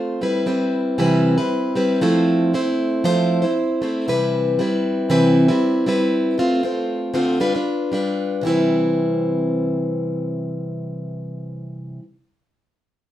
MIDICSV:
0, 0, Header, 1, 2, 480
1, 0, Start_track
1, 0, Key_signature, 0, "major"
1, 0, Tempo, 513699
1, 206, Time_signature, 4, 2, 24, 8
1, 12256, End_track
2, 0, Start_track
2, 0, Title_t, "Steel-string acoustic guitar"
2, 0, Program_c, 0, 25
2, 0, Note_on_c, 0, 57, 52
2, 0, Note_on_c, 0, 60, 55
2, 0, Note_on_c, 0, 65, 59
2, 0, Note_on_c, 0, 72, 57
2, 195, Note_off_c, 0, 57, 0
2, 199, Note_off_c, 0, 60, 0
2, 199, Note_on_c, 0, 55, 58
2, 203, Note_on_c, 0, 60, 58
2, 209, Note_off_c, 0, 65, 0
2, 210, Note_off_c, 0, 72, 0
2, 214, Note_on_c, 0, 64, 67
2, 214, Note_on_c, 0, 71, 69
2, 420, Note_off_c, 0, 55, 0
2, 425, Note_off_c, 0, 60, 0
2, 431, Note_on_c, 0, 55, 57
2, 436, Note_off_c, 0, 64, 0
2, 437, Note_on_c, 0, 60, 61
2, 444, Note_off_c, 0, 71, 0
2, 447, Note_on_c, 0, 64, 69
2, 455, Note_on_c, 0, 71, 68
2, 912, Note_off_c, 0, 55, 0
2, 916, Note_on_c, 0, 48, 77
2, 920, Note_on_c, 0, 52, 87
2, 923, Note_on_c, 0, 55, 85
2, 924, Note_off_c, 0, 71, 0
2, 925, Note_off_c, 0, 60, 0
2, 926, Note_off_c, 0, 64, 0
2, 929, Note_on_c, 0, 60, 85
2, 930, Note_on_c, 0, 64, 87
2, 935, Note_on_c, 0, 71, 81
2, 1275, Note_off_c, 0, 71, 0
2, 1282, Note_off_c, 0, 48, 0
2, 1283, Note_off_c, 0, 64, 0
2, 1284, Note_off_c, 0, 52, 0
2, 1285, Note_off_c, 0, 55, 0
2, 1286, Note_on_c, 0, 71, 56
2, 1288, Note_off_c, 0, 60, 0
2, 1294, Note_on_c, 0, 64, 46
2, 1299, Note_on_c, 0, 60, 47
2, 1304, Note_on_c, 0, 55, 41
2, 1628, Note_off_c, 0, 55, 0
2, 1637, Note_off_c, 0, 60, 0
2, 1640, Note_on_c, 0, 55, 55
2, 1643, Note_off_c, 0, 64, 0
2, 1643, Note_off_c, 0, 71, 0
2, 1648, Note_on_c, 0, 60, 59
2, 1654, Note_on_c, 0, 64, 58
2, 1655, Note_on_c, 0, 71, 64
2, 1875, Note_off_c, 0, 60, 0
2, 1881, Note_on_c, 0, 53, 72
2, 1883, Note_off_c, 0, 55, 0
2, 1883, Note_off_c, 0, 64, 0
2, 1886, Note_on_c, 0, 57, 72
2, 1886, Note_on_c, 0, 60, 78
2, 1891, Note_off_c, 0, 71, 0
2, 1895, Note_on_c, 0, 64, 84
2, 1896, Note_on_c, 0, 72, 77
2, 2356, Note_off_c, 0, 57, 0
2, 2365, Note_off_c, 0, 53, 0
2, 2368, Note_on_c, 0, 57, 57
2, 2371, Note_off_c, 0, 60, 0
2, 2373, Note_off_c, 0, 64, 0
2, 2374, Note_on_c, 0, 60, 61
2, 2377, Note_on_c, 0, 64, 70
2, 2379, Note_off_c, 0, 72, 0
2, 2383, Note_on_c, 0, 72, 69
2, 2837, Note_off_c, 0, 57, 0
2, 2842, Note_on_c, 0, 53, 87
2, 2847, Note_off_c, 0, 60, 0
2, 2848, Note_off_c, 0, 64, 0
2, 2848, Note_on_c, 0, 57, 87
2, 2850, Note_off_c, 0, 72, 0
2, 2851, Note_on_c, 0, 60, 87
2, 2852, Note_on_c, 0, 64, 96
2, 2854, Note_on_c, 0, 72, 96
2, 3184, Note_off_c, 0, 72, 0
2, 3195, Note_on_c, 0, 72, 55
2, 3202, Note_off_c, 0, 64, 0
2, 3205, Note_off_c, 0, 53, 0
2, 3206, Note_off_c, 0, 60, 0
2, 3208, Note_off_c, 0, 57, 0
2, 3214, Note_on_c, 0, 64, 52
2, 3217, Note_on_c, 0, 60, 41
2, 3562, Note_off_c, 0, 72, 0
2, 3566, Note_on_c, 0, 57, 58
2, 3567, Note_off_c, 0, 60, 0
2, 3569, Note_off_c, 0, 64, 0
2, 3578, Note_on_c, 0, 60, 62
2, 3580, Note_on_c, 0, 64, 58
2, 3583, Note_on_c, 0, 72, 64
2, 3804, Note_off_c, 0, 60, 0
2, 3808, Note_off_c, 0, 57, 0
2, 3810, Note_on_c, 0, 48, 72
2, 3810, Note_on_c, 0, 52, 81
2, 3814, Note_off_c, 0, 64, 0
2, 3815, Note_on_c, 0, 60, 85
2, 3816, Note_off_c, 0, 72, 0
2, 3816, Note_on_c, 0, 55, 80
2, 3824, Note_on_c, 0, 64, 78
2, 3824, Note_on_c, 0, 71, 80
2, 4277, Note_off_c, 0, 55, 0
2, 4288, Note_on_c, 0, 55, 65
2, 4290, Note_off_c, 0, 48, 0
2, 4290, Note_off_c, 0, 52, 0
2, 4291, Note_off_c, 0, 60, 0
2, 4294, Note_off_c, 0, 71, 0
2, 4295, Note_on_c, 0, 60, 68
2, 4297, Note_off_c, 0, 64, 0
2, 4305, Note_on_c, 0, 71, 63
2, 4307, Note_on_c, 0, 64, 69
2, 4753, Note_off_c, 0, 55, 0
2, 4761, Note_on_c, 0, 48, 81
2, 4764, Note_off_c, 0, 71, 0
2, 4764, Note_on_c, 0, 52, 86
2, 4764, Note_on_c, 0, 55, 82
2, 4765, Note_off_c, 0, 64, 0
2, 4768, Note_off_c, 0, 60, 0
2, 4772, Note_on_c, 0, 60, 98
2, 4775, Note_on_c, 0, 71, 89
2, 4776, Note_on_c, 0, 64, 95
2, 5113, Note_off_c, 0, 71, 0
2, 5114, Note_off_c, 0, 64, 0
2, 5124, Note_on_c, 0, 71, 54
2, 5125, Note_off_c, 0, 48, 0
2, 5125, Note_on_c, 0, 64, 54
2, 5127, Note_off_c, 0, 52, 0
2, 5127, Note_off_c, 0, 55, 0
2, 5127, Note_off_c, 0, 60, 0
2, 5138, Note_on_c, 0, 60, 46
2, 5140, Note_on_c, 0, 55, 43
2, 5468, Note_off_c, 0, 55, 0
2, 5475, Note_off_c, 0, 60, 0
2, 5479, Note_on_c, 0, 55, 58
2, 5483, Note_off_c, 0, 64, 0
2, 5487, Note_off_c, 0, 71, 0
2, 5487, Note_on_c, 0, 60, 59
2, 5494, Note_on_c, 0, 64, 68
2, 5501, Note_on_c, 0, 71, 68
2, 5955, Note_off_c, 0, 55, 0
2, 5959, Note_on_c, 0, 57, 60
2, 5961, Note_off_c, 0, 60, 0
2, 5968, Note_off_c, 0, 64, 0
2, 5972, Note_on_c, 0, 60, 66
2, 5972, Note_on_c, 0, 65, 68
2, 5976, Note_off_c, 0, 71, 0
2, 5981, Note_on_c, 0, 72, 62
2, 6184, Note_off_c, 0, 57, 0
2, 6187, Note_off_c, 0, 60, 0
2, 6195, Note_on_c, 0, 57, 57
2, 6199, Note_off_c, 0, 65, 0
2, 6199, Note_on_c, 0, 60, 66
2, 6206, Note_off_c, 0, 72, 0
2, 6210, Note_on_c, 0, 65, 62
2, 6217, Note_on_c, 0, 72, 62
2, 6658, Note_off_c, 0, 57, 0
2, 6666, Note_off_c, 0, 60, 0
2, 6667, Note_on_c, 0, 50, 82
2, 6668, Note_off_c, 0, 65, 0
2, 6669, Note_on_c, 0, 57, 78
2, 6675, Note_off_c, 0, 72, 0
2, 6677, Note_on_c, 0, 60, 79
2, 6680, Note_on_c, 0, 65, 91
2, 6687, Note_on_c, 0, 72, 88
2, 6910, Note_off_c, 0, 57, 0
2, 6913, Note_on_c, 0, 55, 74
2, 6914, Note_off_c, 0, 65, 0
2, 6916, Note_off_c, 0, 60, 0
2, 6919, Note_off_c, 0, 50, 0
2, 6920, Note_off_c, 0, 72, 0
2, 6920, Note_on_c, 0, 62, 67
2, 6924, Note_on_c, 0, 71, 83
2, 6925, Note_on_c, 0, 65, 81
2, 7038, Note_off_c, 0, 71, 0
2, 7042, Note_off_c, 0, 55, 0
2, 7042, Note_off_c, 0, 65, 0
2, 7045, Note_off_c, 0, 62, 0
2, 7049, Note_on_c, 0, 71, 53
2, 7053, Note_on_c, 0, 65, 45
2, 7063, Note_on_c, 0, 62, 42
2, 7395, Note_off_c, 0, 62, 0
2, 7397, Note_on_c, 0, 55, 55
2, 7403, Note_off_c, 0, 65, 0
2, 7406, Note_on_c, 0, 62, 59
2, 7410, Note_off_c, 0, 71, 0
2, 7414, Note_on_c, 0, 65, 61
2, 7422, Note_on_c, 0, 71, 61
2, 7862, Note_on_c, 0, 48, 75
2, 7878, Note_on_c, 0, 52, 73
2, 7889, Note_off_c, 0, 55, 0
2, 7889, Note_off_c, 0, 62, 0
2, 7892, Note_off_c, 0, 65, 0
2, 7893, Note_on_c, 0, 55, 83
2, 7904, Note_on_c, 0, 60, 79
2, 7911, Note_on_c, 0, 64, 82
2, 7922, Note_off_c, 0, 71, 0
2, 7926, Note_on_c, 0, 71, 78
2, 11196, Note_off_c, 0, 48, 0
2, 11211, Note_off_c, 0, 52, 0
2, 11226, Note_off_c, 0, 55, 0
2, 11237, Note_off_c, 0, 60, 0
2, 11245, Note_off_c, 0, 64, 0
2, 11260, Note_off_c, 0, 71, 0
2, 12256, End_track
0, 0, End_of_file